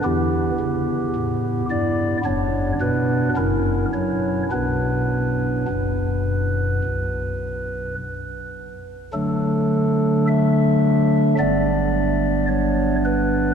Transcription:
<<
  \new Staff \with { instrumentName = "Pipe organ" } { \time 4/4 \key b \minor \tempo 4 = 53 g'4. d''8 cis''8 b'8 ais'8 cis''8 | b'2. r4 | \key d \major a'4 e''4 d''4 cis''8 b'8 | }
  \new Staff \with { instrumentName = "Pipe organ" } { \clef bass \time 4/4 \key b \minor << { <b e'>2 <b d'>4 <cis' e'>4 | r1 | \key d \major <d fis a d'>2 <g, g b d'>2 | } \\ { <e, e>8 cis8 a,8 g,8 <fis,, fis,>8 b,8 <fis,, fis,>8 fis8 | <b,, b, b d'>4 <fis,, fis,>4 b,,4 r4 | r2 g,,2 | } >> }
>>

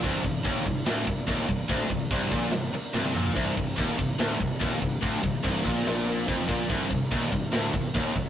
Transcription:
<<
  \new Staff \with { instrumentName = "String section" } { \time 4/4 \key c \minor \tempo 4 = 144 << { <c g ees'>1~ | <c g ees'>1~ | <c g ees'>1~ | <c g ees'>1~ |
<c g ees'>1 | } \\ { d'1~ | d'1 | c'1~ | c'1~ |
c'1 | } >> }
  \new Staff \with { instrumentName = "Distorted electric guitar" } { \clef bass \time 4/4 \key c \minor c,8 c,8 ees,8 c,8 d,8 c,8 ees,8 c,8 | d,8 c,8 c,8 bes,8 c,8 r8 c,8 bes,8 | c,8 c,8 ees,8 c,8 d,8 c,8 ees,8 c,8 | d,8 c,8 c,8 bes,8 bes,4 f,8 bes,8 |
c,8 c,8 ees,8 c,8 d,8 c,8 ees,8 c,8 | }
  \new Staff \with { instrumentName = "Distorted electric guitar" } { \clef bass \time 4/4 \key c \minor c,8 c,8 ees,8 c,8 d,8 c,8 ees,8 c,8 | d,8 c,8 c,8 bes,8 c,8 r8 c,8 bes,8 | c,8 c,8 ees,8 c,8 d,8 c,8 ees,8 c,8 | d,8 c,8 c,8 bes,8 bes,4 f,8 bes,8 |
c,8 c,8 ees,8 c,8 d,8 c,8 ees,8 c,8 | }
  \new Staff \with { instrumentName = "Distorted electric guitar" } { \clef bass \time 4/4 \key c \minor c,8 c,8 ees,8 c,8 d,8 c,8 ees,8 c,8 | d,8 c,8 c,8 bes,8 c,8 r8 c,8 bes,8 | c,8 c,8 ees,8 c,8 d,8 c,8 ees,8 c,8 | d,8 c,8 c,8 bes,8 bes,4 f,8 bes,8 |
c,8 c,8 ees,8 c,8 d,8 c,8 ees,8 c,8 | }
  \new Staff \with { instrumentName = "Fingered electric bass" } { \clef bass \time 4/4 \key c \minor c,,8 c,,8 ees,,8 c,,8 d,,8 c,,8 ees,,8 c,,8 | d,,8 c,,8 c,,8 bes,,8 c,,8 r8 c,,8 bes,,8 | c,,8 c,,8 ees,,8 c,,8 d,,8 c,,8 ees,,8 c,,8 | d,,8 c,,8 c,,8 bes,,8 bes,,4 f,,8 bes,,8 |
c,,8 c,,8 ees,,8 c,,8 d,,8 c,,8 ees,,8 c,,8 | }
  \new DrumStaff \with { instrumentName = "Drums" } \drummode { \time 4/4 <cymc bd>8 <cymc bd>8 <cymc bd>8 <cymc bd>8 <cymc sn>8 <cymc bd>8 <cymc bd>8 <cymc bd>8 | <cymc bd>8 <cymc bd>8 <cymc bd>8 <cymc bd>8 <cymc sn>8 cymc8 sn16 tommh16 toml16 tomfh16 | <cymc bd>8 <cymc bd>8 <cymc bd>8 <cymc bd>8 <cymc sn>8 <cymc bd>8 <cymc bd>8 <cymc bd>8 | <cymc bd>8 <cymc bd>8 <cymc bd>8 <cymc bd>8 <cymc sn>8 cymc8 <cymc bd>8 <cymc bd>8 |
<cymc bd>8 <cymc bd>8 <cymc bd>8 <cymc bd>8 <cymc sn>8 <cymc bd>8 <cymc bd>8 <cymc bd>8 | }
>>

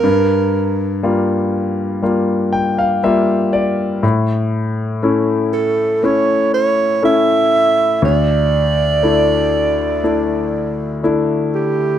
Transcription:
<<
  \new Staff \with { instrumentName = "Alto saxophone" } { \time 4/4 \key g \dorian \tempo 4 = 60 bes'4 r2. | r4. a'8 cis''8 cis''8 e''4 | d''2. r8 g'8 | }
  \new Staff \with { instrumentName = "Grand piano" } { \time 4/4 \key g \dorian r2 r8 g''16 f''16 e''8 d''8 | r1 | r1 | }
  \new Staff \with { instrumentName = "Grand piano" } { \time 4/4 \key g \dorian g,4 <g bes f'>4 <g bes f'>4 <g bes f'>4 | a,4 <a cis' e'>4 <a cis' e'>4 <a cis' e'>4 | d,4 <a d' e'>4 <a d' e'>4 <a d' e'>4 | }
>>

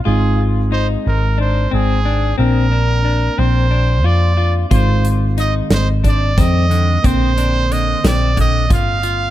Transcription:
<<
  \new Staff \with { instrumentName = "Trumpet" } { \time 7/8 \key bes \mixolydian \tempo 4 = 90 aes'8 r8 c''8 bes'8 c''8 aes'4 | bes'4. c''4 d''8. r16 | c''8 r8 ees''8 c''8 d''8 ees''4 | c''4 ees''8 d''8 ees''8 f''4 | }
  \new Staff \with { instrumentName = "Clean electric guitar" } { \time 7/8 \key bes \mixolydian f'4 ees'4 d'8 c'8 d'8 | c'8 d'8 d'8 c'8 d'8 f'8 f'8 | f'4 ees'4 d'8 c'8 d8 | c'8 d'8 d8 c'8 d8 f'8 f'8 | }
  \new Staff \with { instrumentName = "Tine electric piano" } { \time 7/8 \key bes \mixolydian <aes c' ees'>2.~ <aes c' ees'>8 | <bes c' d'>2.~ <bes c' d'>8 | <ees aes c'>2.~ <ees aes c'>8 | <d bes c'>2.~ <d bes c'>8 | }
  \new Staff \with { instrumentName = "Picked electric bass" } { \clef bass \time 7/8 \key bes \mixolydian aes,,4. aes,,4 aes,,4 | bes,,4. bes,,4 f,4 | aes,,4. aes,,4 f,4 | bes,,4. bes,,4 g,,4 | }
  \new DrumStaff \with { instrumentName = "Drums" } \drummode { \time 7/8 r4. r4 r4 | r4. r4 r4 | <hh bd>8 hh8 hh8 <hh sn>8 <hh bd>8 <hh bd sn>8 hh8 | <hh bd>8 hh8 hh8 <hh sn>8 <hh bd>8 <hh bd>8 hh8 | }
>>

